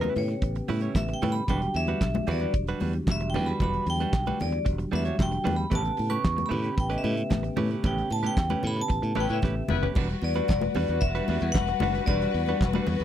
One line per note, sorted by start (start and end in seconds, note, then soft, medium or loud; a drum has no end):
0.00 1.45 C#3 medium
0.00 0.13 G3 medium
0.00 1.45 B3 medium
0.00 0.14 C#4 medium
0.00 0.14 E4 medium
0.00 1.45 G4 medium
0.00 0.19 B4 loud
0.00 0.15 B4 medium
0.00 closed hi-hat soft
0.00 high conga loud
0.16 0.34 A2 medium
0.16 0.42 C#5 medium
0.16 open hi-hat medium
0.16 muted conga soft
0.16 low conga medium
0.28 muted clean electric guitar stroke soft
0.28 snare soft
0.28 closed hi-hat soft
0.42 0.60 A1 medium
0.42 muted clean electric guitar stroke soft
0.42 kick loud
0.42 closed hi-hat medium
0.55 muted clean electric guitar stroke soft
0.55 closed hi-hat soft
0.68 0.87 A2 medium
0.68 0.82 G3 medium
0.68 0.82 C#4 medium
0.68 0.81 E4 medium
0.68 0.82 B4 medium
0.68 open hi-hat medium
0.68 muted conga soft
0.68 high conga medium
0.81 0.94 G3 medium
0.81 0.94 C#4 medium
0.81 0.95 E4 medium
0.81 0.96 C#5 medium
0.81 closed hi-hat medium
0.95 1.13 A1 loud
0.95 1.14 E5 medium
0.95 muted clean electric guitar stroke soft
0.95 kick loud
0.95 snare loud
0.95 clap medium
0.95 high conga medium
1.08 muted clean electric guitar stroke medium
1.08 closed hi-hat soft
1.14 1.32 G5 medium
1.22 1.40 A2 medium
1.22 1.42 G3 medium
1.22 1.35 C#4 medium
1.22 1.35 E4 medium
1.22 1.35 B4 medium
1.22 open hi-hat medium
1.22 high conga medium
1.22 low conga medium
1.32 1.50 B5 loud
1.32 muted clean electric guitar stroke soft
1.32 closed hi-hat soft
1.47 1.66 E1 loud
1.47 5.67 D3 medium
1.47 5.67 F#3 medium
1.47 5.67 G3 medium
1.47 1.69 G3 medium
1.47 1.62 D4 medium
1.47 1.61 F#4 medium
1.47 1.61 B4 medium
1.47 1.76 G5 medium
1.47 kick loud
1.47 closed hi-hat medium
1.47 muted conga soft
1.47 low conga medium
1.62 muted clean electric guitar stroke soft
1.62 closed hi-hat soft
1.74 1.92 E2 loud
1.74 2.30 E5 loud
1.74 muted clean electric guitar stroke soft
1.74 open hi-hat medium
1.87 2.01 G3 medium
1.87 2.01 D4 medium
1.87 2.01 F#4 medium
1.87 2.02 B4 medium
1.87 closed hi-hat soft
1.87 high conga medium
2.01 2.19 B1 medium
2.01 muted clean electric guitar stroke soft
2.01 kick loud
2.01 snare loud
2.01 clap loud
2.01 muted conga soft
2.14 muted clean electric guitar stroke medium
2.14 closed hi-hat soft
2.14 high conga loud
2.27 2.45 E2 loud
2.27 2.41 G3 medium
2.27 2.40 D4 medium
2.27 2.40 F#4 medium
2.27 2.40 B4 medium
2.27 open hi-hat medium
2.27 muted conga soft
2.27 low conga medium
2.31 2.54 D5 medium
2.40 2.53 G3 soft
2.40 2.53 D4 medium
2.40 2.54 F#4 medium
2.40 2.54 B4 medium
2.40 closed hi-hat soft
2.54 2.71 E1 medium
2.54 kick loud
2.54 closed hi-hat medium
2.67 2.79 G3 medium
2.67 2.80 D4 medium
2.67 2.80 F#4 medium
2.67 2.81 B4 medium
2.67 closed hi-hat soft
2.80 2.99 E2 medium
2.80 2.96 G3 medium
2.80 2.94 D4 medium
2.80 2.94 F#4 medium
2.80 2.93 B4 medium
2.80 open hi-hat medium
2.80 high conga medium
2.93 muted clean electric guitar stroke medium
2.93 closed hi-hat medium
3.07 3.36 E1 loud
3.07 muted clean electric guitar stroke soft
3.07 kick loud
3.07 snare loud
3.07 clap medium
3.07 muted conga soft
3.07 high conga medium
3.11 3.26 E5 loud
3.20 muted clean electric guitar stroke soft
3.20 closed hi-hat soft
3.30 3.45 G5 medium
3.34 3.52 E2 medium
3.34 3.48 G3 medium
3.34 3.48 D4 medium
3.34 3.47 F#4 medium
3.34 3.47 B4 loud
3.34 open hi-hat medium
3.34 high conga medium
3.34 low conga medium
3.46 3.59 G3 soft
3.46 3.60 D4 medium
3.46 3.60 F#4 medium
3.46 3.61 B4 medium
3.46 3.53 B5 medium
3.46 closed hi-hat soft
3.60 3.78 E1 loud
3.60 3.85 G3 medium
3.60 3.85 D4 medium
3.60 3.85 F#4 medium
3.60 3.86 B4 loud
3.60 3.87 B5 loud
3.60 kick loud
3.60 closed hi-hat medium
3.60 muted conga soft
3.60 low conga medium
3.73 closed hi-hat soft
3.86 4.04 E2 loud
3.86 4.43 G5 loud
3.86 muted clean electric guitar stroke soft
3.86 open hi-hat medium
4.00 4.12 G3 medium
4.00 4.13 D4 medium
4.00 4.13 F#4 medium
4.00 4.14 B4 medium
4.00 closed hi-hat medium
4.00 high conga medium
4.13 4.30 B1 loud
4.13 kick loud
4.13 snare loud
4.13 clap loud
4.13 muted conga soft
4.26 4.38 G3 medium
4.26 4.39 D4 medium
4.26 4.39 F#4 medium
4.26 4.39 B4 medium
4.26 closed hi-hat soft
4.26 high conga loud
4.40 4.58 E2 loud
4.40 4.66 D5 medium
4.40 open hi-hat medium
4.40 low conga medium
4.52 muted clean electric guitar stroke medium
4.52 closed hi-hat soft
4.65 4.84 E1 medium
4.65 muted clean electric guitar stroke soft
4.65 kick loud
4.65 closed hi-hat medium
4.79 muted clean electric guitar stroke soft
4.79 closed hi-hat soft
4.92 5.10 E2 loud
4.92 5.05 G3 medium
4.92 5.05 D4 medium
4.92 5.04 F#4 medium
4.92 5.05 B4 medium
4.92 5.21 E5 medium
4.92 open hi-hat medium
4.92 muted conga soft
4.92 high conga medium
5.05 5.16 G3 medium
5.05 5.16 D4 medium
5.05 5.17 F#4 medium
5.05 5.18 C#5 medium
5.05 closed hi-hat medium
5.18 5.37 E1 loud
5.18 muted clean electric guitar stroke soft
5.18 kick loud
5.18 snare loud
5.18 clap medium
5.18 high conga medium
5.22 5.57 G5 loud
5.31 muted clean electric guitar stroke soft
5.31 closed hi-hat soft
5.44 5.63 E2 medium
5.44 5.65 G3 medium
5.44 5.57 D4 medium
5.44 5.56 F#4 medium
5.44 5.56 B4 loud
5.44 open hi-hat medium
5.44 muted conga soft
5.44 high conga medium
5.44 low conga medium
5.57 5.74 B5 medium
5.57 muted clean electric guitar stroke soft
5.57 closed hi-hat medium
5.70 5.89 A1 medium
5.70 9.92 C#3 medium
5.70 5.91 A3 medium
5.70 9.92 B3 medium
5.70 5.83 C#4 medium
5.70 5.83 G4 medium
5.70 9.92 G4 medium
5.70 5.82 B4 medium
5.70 kick loud
5.70 closed hi-hat medium
5.70 muted conga soft
5.70 low conga medium
5.75 6.10 A5 loud
5.83 muted clean electric guitar stroke soft
5.83 closed hi-hat soft
5.97 6.16 A2 loud
5.97 muted clean electric guitar stroke soft
5.97 open hi-hat medium
5.97 muted conga soft
6.10 6.23 A3 medium
6.10 6.23 C#4 medium
6.10 6.23 G4 medium
6.10 6.24 B4 medium
6.10 6.45 C#6 loud
6.10 closed hi-hat soft
6.10 high conga medium
6.24 6.42 E2 loud
6.24 kick loud
6.24 snare loud
6.24 clap loud
6.37 muted clean electric guitar stroke soft
6.37 closed hi-hat soft
6.37 high conga medium
6.46 6.62 A3 medium
6.46 6.81 B5 loud
6.50 6.69 A2 loud
6.50 6.62 C#4 medium
6.50 6.62 G4 medium
6.50 6.61 B4 loud
6.50 open hi-hat medium
6.50 muted conga soft
6.50 low conga medium
6.62 6.75 A3 medium
6.62 6.76 C#4 medium
6.62 6.76 G4 medium
6.62 6.76 B4 medium
6.62 closed hi-hat soft
6.77 6.95 A1 loud
6.77 6.90 G5 medium
6.77 kick loud
6.77 closed hi-hat medium
6.77 muted conga soft
6.90 7.02 A3 medium
6.90 7.02 C#4 medium
6.90 7.03 G4 medium
6.90 7.03 B4 medium
6.90 6.97 D#5 medium
6.90 closed hi-hat soft
6.98 7.46 E5 medium
7.03 7.21 A2 loud
7.03 7.19 A3 medium
7.03 7.17 C#4 medium
7.03 7.16 G4 medium
7.03 7.15 B4 medium
7.03 open hi-hat medium
7.03 muted conga soft
7.03 high conga medium
7.17 muted clean electric guitar stroke medium
7.17 closed hi-hat medium
7.30 7.48 A1 loud
7.30 muted clean electric guitar stroke soft
7.30 kick loud
7.30 snare loud
7.30 clap medium
7.30 muted conga soft
7.30 high conga medium
7.43 muted clean electric guitar stroke medium
7.43 closed hi-hat soft
7.57 7.75 A2 medium
7.57 7.71 A3 loud
7.57 7.70 C#4 loud
7.57 7.70 G4 medium
7.57 7.70 B4 medium
7.57 open hi-hat medium
7.57 muted conga soft
7.57 high conga medium
7.57 low conga medium
7.71 7.82 A3 medium
7.71 7.83 C#4 medium
7.71 7.84 G4 medium
7.71 7.84 B4 medium
7.71 closed hi-hat medium
7.84 8.01 A1 loud
7.84 8.08 A3 medium
7.84 8.08 C#4 medium
7.84 8.09 G4 medium
7.84 8.09 B4 medium
7.84 8.12 G5 medium
7.84 kick loud
7.84 closed hi-hat medium
7.84 low conga medium
7.98 closed hi-hat soft
8.10 8.28 A2 medium
8.10 8.25 A5 loud
8.10 muted clean electric guitar stroke medium
8.10 open hi-hat medium
8.10 muted conga soft
8.23 8.35 A3 medium
8.23 8.36 C#4 medium
8.23 8.36 G4 medium
8.23 8.36 B4 medium
8.23 8.66 G5 loud
8.23 closed hi-hat medium
8.23 high conga medium
8.37 8.54 E2 loud
8.37 kick loud
8.37 snare loud
8.37 clap loud
8.50 8.62 A3 medium
8.50 8.63 C#4 medium
8.50 8.63 G4 medium
8.50 8.63 B4 medium
8.50 closed hi-hat soft
8.50 high conga loud
8.63 8.81 A2 loud
8.63 muted clean electric guitar stroke soft
8.63 open hi-hat medium
8.63 muted conga soft
8.63 low conga medium
8.67 8.79 B5 loud
8.77 muted clean electric guitar stroke soft
8.77 snare soft
8.77 closed hi-hat soft
8.81 9.20 A5 loud
8.88 8.99 A1 medium
8.88 muted clean electric guitar stroke medium
8.88 kick loud
8.88 closed hi-hat medium
8.88 muted conga soft
9.02 9.12 A2 loud
9.02 muted clean electric guitar stroke soft
9.02 closed hi-hat medium
9.15 9.25 A1 medium
9.15 9.25 G3 medium
9.15 9.30 A3 loud
9.15 9.25 B3 loud
9.15 9.30 C#4 loud
9.15 9.25 E4 loud
9.15 9.29 G4 medium
9.15 9.25 B4 loud
9.15 9.30 B4 loud
9.15 open hi-hat medium
9.15 high conga medium
9.20 9.32 G5 medium
9.29 9.39 A2 loud
9.29 9.38 G3 medium
9.29 9.41 A3 medium
9.29 9.38 B3 medium
9.29 9.42 C#4 medium
9.29 9.38 E4 medium
9.29 9.43 G4 medium
9.29 9.38 B4 loud
9.29 9.44 C#5 medium
9.29 closed hi-hat medium
9.33 9.81 E5 medium
9.42 9.60 A1 medium
9.42 9.63 A3 medium
9.42 9.56 C#4 loud
9.42 9.55 G4 loud
9.42 9.55 B4 loud
9.42 kick loud
9.42 snare medium
9.42 high conga medium
9.56 muted clean electric guitar stroke soft
9.68 9.87 F#1 medium
9.68 9.87 G3 medium
9.68 9.86 B3 loud
9.68 9.86 E4 loud
9.68 9.86 B4 loud
9.68 muted clean electric guitar stroke medium
9.68 mid tom loud
9.68 muted conga soft
9.68 high conga medium
9.68 low conga medium
9.83 9.96 A3 soft
9.83 9.96 C#4 medium
9.83 9.97 G4 medium
9.83 9.96 B4 medium
9.83 floor tom loud
9.95 10.13 E1 loud
9.95 13.04 G3 medium
9.95 10.16 G3 medium
9.95 10.09 D4 medium
9.95 13.04 F#4 medium
9.95 10.09 F#4 medium
9.95 13.04 B4 medium
9.95 10.08 B4 medium
9.95 kick loud
9.95 crash loud
9.95 muted conga soft
9.95 low conga medium
10.09 muted clean electric guitar stroke soft
10.09 closed hi-hat soft
10.22 10.40 E2 loud
10.22 10.47 D5 medium
10.22 muted clean electric guitar stroke soft
10.22 open hi-hat medium
10.22 muted conga soft
10.34 10.49 G3 medium
10.34 10.49 D4 medium
10.34 10.49 F#4 medium
10.34 10.49 B4 medium
10.34 closed hi-hat medium
10.34 high conga medium
10.48 10.66 E1 loud
10.48 11.03 D5 medium
10.48 kick loud
10.48 snare loud
10.48 clap loud
10.48 muted conga soft
10.61 muted clean electric guitar stroke medium
10.61 closed hi-hat soft
10.61 high conga loud
10.75 10.84 E2 loud
10.75 10.89 G3 medium
10.75 10.89 D4 medium
10.75 10.89 F#4 medium
10.75 10.88 B4 loud
10.75 open hi-hat medium
10.75 muted conga soft
10.75 low conga medium
10.88 10.98 E2 loud
10.88 11.01 G3 soft
10.88 11.02 D4 medium
10.88 11.02 F#4 medium
10.88 11.03 B4 medium
10.88 closed hi-hat soft
11.01 11.19 E1 loud
11.01 11.56 E5 loud
11.01 muted clean electric guitar stroke soft
11.01 kick loud
11.01 closed hi-hat medium
11.01 muted conga soft
11.15 11.27 G3 medium
11.15 11.28 D4 medium
11.15 11.28 F#4 medium
11.15 11.29 B4 medium
11.15 closed hi-hat medium
11.28 11.37 E2 loud
11.28 11.44 G3 medium
11.28 11.41 D4 medium
11.28 11.41 F#4 medium
11.28 11.40 B4 medium
11.28 open hi-hat medium
11.28 muted conga soft
11.28 high conga medium
11.41 11.50 E2 loud
11.41 muted clean electric guitar stroke soft
11.41 closed hi-hat medium
11.52 11.72 E1 loud
11.52 12.08 F#5 loud
11.52 muted clean electric guitar stroke soft
11.52 kick loud
11.52 snare loud
11.52 clap medium
11.52 high conga medium
11.67 muted clean electric guitar stroke medium
11.67 closed hi-hat medium
11.80 11.98 F#1 medium
11.80 11.96 G3 medium
11.80 11.95 D4 medium
11.80 11.95 F#4 loud
11.80 11.94 B4 medium
11.80 open hi-hat medium
11.80 muted conga soft
11.80 high conga loud
11.80 low conga loud
11.95 12.07 G3 soft
11.95 12.07 D4 medium
11.95 12.08 F#4 medium
11.95 12.08 B4 medium
11.95 closed hi-hat medium
12.06 12.25 E1 loud
12.06 12.32 G3 medium
12.06 12.32 D4 medium
12.06 12.33 F#4 medium
12.06 12.33 B4 loud
12.06 12.56 D5 medium
12.06 kick loud
12.06 closed hi-hat medium
12.06 muted conga soft
12.06 low conga medium
12.22 closed hi-hat soft
12.34 12.52 E2 loud
12.34 muted clean electric guitar stroke medium
12.34 open hi-hat medium
12.47 12.61 G3 medium
12.47 12.61 D4 medium
12.47 12.61 F#4 medium
12.47 12.62 B4 medium
12.47 closed hi-hat soft
12.47 high conga medium
12.61 12.78 E1 loud
12.61 muted clean electric guitar stroke soft
12.61 kick loud
12.61 snare loud
12.61 clap loud
12.73 12.88 G3 medium
12.73 12.88 D4 medium
12.73 12.88 F#4 medium
12.73 12.89 B4 medium
12.73 closed hi-hat soft
12.73 high conga loud
12.87 12.96 E2 loud
12.87 muted clean electric guitar stroke soft
12.87 open hi-hat medium
12.87 muted conga soft
12.87 low conga medium
13.00 13.04 E2 medium
13.00 closed hi-hat soft